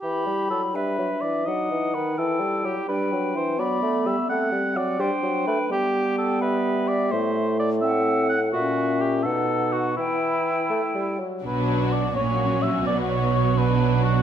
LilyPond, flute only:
\new Staff \with { instrumentName = "Flute" } { \time 6/8 \key e \minor \tempo 4. = 84 b''4. e''4. | fis''4. g''4. | g''4. b''4. | fis''4. g''4. |
g''4. e''4.~ | e''4. fis''4. | e''4. fis''4. | g''2~ g''8 r8 |
\key b \minor r2. | r2. | }